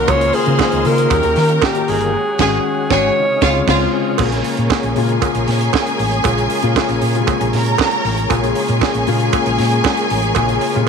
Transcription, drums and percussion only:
0.08 kick loud
0.08 closed hi-hat medium
0.08 cowbell medium
0.21 closed hi-hat soft
0.33 open hi-hat medium
0.46 closed hi-hat soft
0.59 kick loud
0.59 snare loud
0.59 cowbell medium
0.72 closed hi-hat soft
0.85 open hi-hat medium
0.98 closed hi-hat medium
1.10 kick loud
1.10 closed hi-hat medium
1.10 cowbell medium
1.23 closed hi-hat soft
1.36 snare soft
1.36 open hi-hat medium
1.49 closed hi-hat soft
1.62 kick loud
1.62 snare loud
1.62 cowbell medium
1.75 closed hi-hat medium
1.88 open hi-hat medium
2.01 closed hi-hat soft
2.39 kick loud
2.39 snare loud
2.39 crash medium
2.91 kick loud
2.91 snare loud
3.42 kick loud
3.42 snare loud
3.67 kick loud
3.67 snare loud
3.67 crash medium
4.18 kick loud
4.18 crash loud
4.18 cowbell medium
4.32 closed hi-hat soft
4.44 open hi-hat medium
4.57 closed hi-hat soft
4.70 kick loud
4.70 snare loud
4.70 cowbell medium
4.83 closed hi-hat soft
4.96 open hi-hat medium
5.09 closed hi-hat soft
5.22 kick loud
5.22 closed hi-hat medium
5.22 cowbell medium
5.35 closed hi-hat soft
5.48 snare soft
5.48 open hi-hat medium
5.61 closed hi-hat soft
5.73 kick loud
5.73 snare loud
5.73 cowbell medium
5.87 closed hi-hat soft
5.99 open hi-hat medium
6.12 closed hi-hat soft
6.24 kick loud
6.24 closed hi-hat medium
6.24 cowbell medium
6.38 closed hi-hat soft
6.50 open hi-hat medium
6.63 closed hi-hat soft
6.76 kick loud
6.76 snare loud
6.76 cowbell medium
6.89 closed hi-hat soft
7.01 open hi-hat medium
7.15 closed hi-hat medium
7.27 kick loud
7.27 closed hi-hat medium
7.27 cowbell medium
7.41 closed hi-hat soft
7.53 snare soft
7.53 open hi-hat medium
7.66 closed hi-hat soft
7.78 kick loud
7.78 snare loud
7.78 cowbell medium
7.91 closed hi-hat soft
8.05 open hi-hat medium
8.18 closed hi-hat soft
8.30 kick loud
8.30 closed hi-hat medium
8.30 cowbell medium
8.44 closed hi-hat soft
8.55 open hi-hat medium
8.68 closed hi-hat soft
8.81 kick loud
8.81 snare loud
8.81 cowbell medium
8.94 closed hi-hat soft
9.07 open hi-hat medium
9.20 closed hi-hat soft
9.33 kick loud
9.33 closed hi-hat medium
9.33 cowbell medium
9.46 closed hi-hat soft
9.59 snare soft
9.59 open hi-hat medium
9.71 closed hi-hat soft
9.84 kick loud
9.84 snare loud
9.84 cowbell medium
9.97 closed hi-hat soft
10.10 open hi-hat medium
10.23 closed hi-hat soft
10.35 kick loud
10.35 closed hi-hat medium
10.35 cowbell medium
10.49 closed hi-hat soft
10.61 open hi-hat medium
10.74 closed hi-hat soft

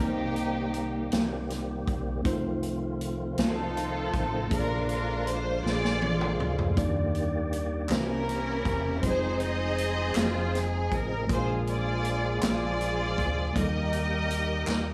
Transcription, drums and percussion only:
0.36 closed hi-hat soft
0.74 closed hi-hat medium
1.12 snare loud
1.12 closed hi-hat medium
1.50 snare soft
1.50 closed hi-hat medium
1.87 kick medium
1.87 closed hi-hat soft
2.25 kick loud
2.25 closed hi-hat medium
2.63 closed hi-hat soft
3.01 closed hi-hat medium
3.38 snare loud
3.38 closed hi-hat medium
3.77 closed hi-hat medium
4.14 kick medium
4.14 closed hi-hat soft
4.51 kick loud
4.51 closed hi-hat medium
4.89 closed hi-hat soft
5.27 closed hi-hat medium
5.66 snare medium
5.85 snare medium
6.02 high tom medium
6.21 mid tom medium
6.40 mid tom loud
6.58 floor tom medium
6.77 kick loud
6.77 closed hi-hat medium
7.15 closed hi-hat soft
7.53 closed hi-hat medium
7.89 snare loud
7.89 clap medium
7.89 closed hi-hat medium
8.29 closed hi-hat medium
8.65 kick medium
8.65 closed hi-hat soft
9.03 kick loud
9.03 closed hi-hat medium
9.40 closed hi-hat soft
9.78 closed hi-hat medium
10.15 snare loud
10.15 clap loud
10.15 closed hi-hat medium
10.55 snare soft
10.55 closed hi-hat medium
10.92 kick medium
10.92 closed hi-hat soft
11.29 kick loud
11.29 closed hi-hat medium
11.67 closed hi-hat soft
12.05 closed hi-hat medium
12.42 snare loud
12.42 clap medium
12.42 closed hi-hat medium
12.81 closed hi-hat soft
13.18 kick medium
13.18 closed hi-hat soft
13.56 kick loud
13.56 closed hi-hat medium
13.93 closed hi-hat soft
14.30 closed hi-hat medium
14.67 snare medium
14.67 clap medium

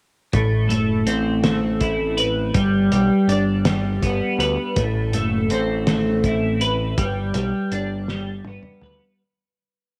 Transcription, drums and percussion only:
0.33 kick loud
0.33 closed hi-hat medium
0.70 closed hi-hat medium
1.07 closed hi-hat medium
1.44 snare medium
1.44 closed hi-hat medium
1.81 kick medium
1.81 closed hi-hat medium
2.18 closed hi-hat medium
2.54 kick loud
2.54 closed hi-hat medium
2.92 closed hi-hat medium
3.29 closed hi-hat medium
3.65 snare loud
3.65 closed hi-hat medium
4.03 kick medium
4.03 closed hi-hat medium
4.40 closed hi-hat medium
4.76 kick loud
4.76 closed hi-hat medium
5.13 closed hi-hat medium
5.50 closed hi-hat medium
5.87 snare loud
5.87 closed hi-hat medium
6.24 kick medium
6.24 closed hi-hat medium
6.61 closed hi-hat medium
6.98 kick loud
6.98 closed hi-hat medium
7.34 closed hi-hat medium
7.72 closed hi-hat medium
8.08 snare medium
8.45 high tom medium
8.63 mid tom medium
8.81 mid tom medium

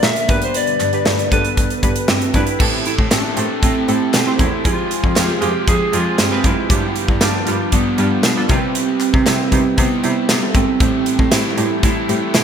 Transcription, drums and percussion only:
0.03 snare loud
0.03 clap medium
0.16 closed hi-hat medium
0.29 kick loud
0.29 closed hi-hat medium
0.42 closed hi-hat medium
0.54 closed hi-hat medium
0.67 closed hi-hat soft
0.80 clap medium
0.80 closed hi-hat medium
0.93 closed hi-hat soft
1.06 snare loud
1.06 clap medium
1.19 closed hi-hat medium
1.32 kick medium
1.32 closed hi-hat medium
1.45 closed hi-hat medium
1.57 kick medium
1.57 closed hi-hat medium
1.70 closed hi-hat medium
1.83 kick medium
1.83 closed hi-hat medium
1.96 closed hi-hat medium
2.08 snare loud
2.08 clap medium
2.22 closed hi-hat medium
2.34 kick medium
2.34 closed hi-hat medium
2.47 closed hi-hat medium
2.60 kick loud
2.60 crash loud
2.86 closed hi-hat medium
2.98 kick medium
3.11 snare loud
3.11 clap medium
3.11 closed hi-hat loud
3.11 tambourine medium
3.37 closed hi-hat medium
3.63 kick loud
3.63 closed hi-hat medium
3.89 closed hi-hat medium
4.14 snare loud
4.14 clap medium
4.14 closed hi-hat medium
4.14 tambourine medium
4.39 kick medium
4.39 closed hi-hat medium
4.65 kick loud
4.65 closed hi-hat medium
4.91 closed hi-hat medium
5.04 kick medium
5.16 snare loud
5.16 clap medium
5.16 closed hi-hat loud
5.16 tambourine medium
5.42 closed hi-hat medium
5.68 kick loud
5.68 closed hi-hat medium
5.93 closed hi-hat medium
6.19 snare loud
6.19 clap medium
6.19 closed hi-hat medium
6.19 tambourine medium
6.44 kick loud
6.44 closed hi-hat medium
6.70 kick loud
6.70 closed hi-hat loud
6.96 closed hi-hat medium
7.08 kick medium
7.21 snare loud
7.21 clap medium
7.21 closed hi-hat loud
7.21 tambourine medium
7.47 closed hi-hat medium
7.72 kick medium
7.72 closed hi-hat loud
7.98 closed hi-hat medium
8.23 snare loud
8.23 clap medium
8.23 closed hi-hat medium
8.23 tambourine medium
8.49 kick loud
8.49 closed hi-hat medium
8.75 closed hi-hat medium
9.00 clap medium
9.00 closed hi-hat medium
9.14 kick medium
9.26 snare loud
9.26 clap medium
9.26 closed hi-hat loud
9.26 tambourine medium
9.52 kick medium
9.52 closed hi-hat medium
9.78 kick loud
9.78 closed hi-hat medium
10.04 closed hi-hat medium
10.29 snare loud
10.29 clap loud
10.29 closed hi-hat medium
10.29 tambourine medium
10.54 kick loud
10.54 closed hi-hat medium
10.80 kick loud
10.80 closed hi-hat medium
11.06 closed hi-hat medium
11.19 kick medium
11.32 snare loud
11.32 clap medium
11.32 closed hi-hat loud
11.32 tambourine medium
11.58 closed hi-hat medium
11.83 kick loud
11.83 closed hi-hat medium
12.09 closed hi-hat medium
12.35 snare loud
12.35 clap medium
12.35 closed hi-hat medium
12.35 tambourine medium

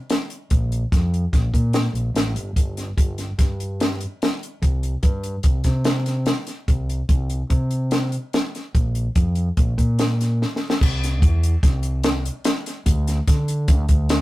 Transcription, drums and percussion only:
0.10 snare medium
0.10 closed hi-hat medium
0.30 closed hi-hat medium
0.50 kick medium
0.50 closed hi-hat medium
0.72 closed hi-hat soft
0.92 kick medium
0.92 snare soft
0.92 closed hi-hat medium
1.14 closed hi-hat soft
1.33 kick medium
1.33 snare soft
1.33 closed hi-hat medium
1.54 kick medium
1.54 closed hi-hat medium
1.73 snare loud
1.73 closed hi-hat medium
1.95 closed hi-hat medium
2.16 snare medium
2.16 closed hi-hat medium
2.36 closed hi-hat medium
2.56 kick medium
2.56 closed hi-hat medium
2.77 snare soft
2.77 closed hi-hat soft
2.98 kick medium
2.98 closed hi-hat medium
3.18 snare soft
3.18 closed hi-hat medium
3.39 kick medium
3.39 snare soft
3.39 closed hi-hat medium
3.60 closed hi-hat medium
3.80 snare loud
3.80 closed hi-hat medium
4.00 closed hi-hat medium
4.22 snare loud
4.22 closed hi-hat medium
4.43 closed hi-hat medium
4.63 kick medium
4.63 closed hi-hat medium
4.83 closed hi-hat soft
5.03 kick medium
5.03 closed hi-hat medium
5.23 closed hi-hat medium
5.43 kick medium
5.43 closed hi-hat medium
5.64 kick medium
5.64 snare soft
5.64 closed hi-hat medium
5.84 snare loud
5.84 closed hi-hat medium
6.06 snare soft
6.06 closed hi-hat medium
6.26 snare loud
6.26 closed hi-hat medium
6.47 snare soft
6.47 closed hi-hat medium
6.68 kick medium
6.68 closed hi-hat medium
6.89 closed hi-hat medium
7.09 kick medium
7.09 closed hi-hat medium
7.30 closed hi-hat medium
7.50 kick medium
7.50 closed hi-hat medium
7.71 closed hi-hat medium
7.91 snare medium
7.91 closed hi-hat medium
8.12 closed hi-hat soft
8.33 snare loud
8.33 closed hi-hat medium
8.55 snare soft
8.55 closed hi-hat medium
8.75 kick medium
8.75 closed hi-hat medium
8.95 closed hi-hat medium
9.15 kick medium
9.15 closed hi-hat medium
9.35 closed hi-hat medium
9.57 kick medium
9.57 closed hi-hat medium
9.78 kick medium
9.78 closed hi-hat medium
9.99 snare medium
9.99 closed hi-hat medium
10.21 snare soft
10.21 closed hi-hat medium
10.42 snare medium
10.56 snare medium
10.70 snare medium
10.81 kick loud
10.81 crash loud
11.04 snare soft
11.04 closed hi-hat medium
11.22 kick loud
11.22 closed hi-hat medium
11.43 closed hi-hat medium
11.63 kick medium
11.63 snare soft
11.63 closed hi-hat medium
11.83 closed hi-hat medium
12.04 snare loud
12.04 closed hi-hat medium
12.25 closed hi-hat medium
12.44 snare loud
12.44 closed hi-hat medium
12.66 snare soft
12.66 closed hi-hat medium
12.86 kick loud
12.86 closed hi-hat medium
13.07 snare soft
13.07 closed hi-hat medium
13.28 kick medium
13.28 snare soft
13.28 closed hi-hat medium
13.48 closed hi-hat medium
13.68 kick loud
13.68 closed hi-hat medium
13.89 kick medium
13.89 closed hi-hat medium
14.09 snare loud
14.09 closed hi-hat loud

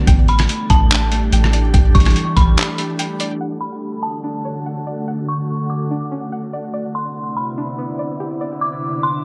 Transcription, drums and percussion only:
0.07 kick loud
0.07 closed hi-hat medium
0.28 closed hi-hat soft
0.39 cross-stick loud
0.39 closed hi-hat medium
0.49 closed hi-hat medium
0.70 kick medium
0.70 closed hi-hat medium
0.91 clap loud
0.91 closed hi-hat medium
1.12 closed hi-hat medium
1.32 closed hi-hat medium
1.44 cross-stick loud
1.53 closed hi-hat medium
1.74 kick loud
1.74 closed hi-hat medium
1.95 kick loud
1.95 closed hi-hat medium
2.00 closed hi-hat medium
2.05 cross-stick loud
2.05 closed hi-hat medium
2.11 closed hi-hat medium
2.16 closed hi-hat medium
2.37 kick medium
2.37 closed hi-hat medium
2.57 clap loud
2.57 closed hi-hat medium
2.78 closed hi-hat medium
2.99 closed hi-hat medium
3.20 closed hi-hat medium

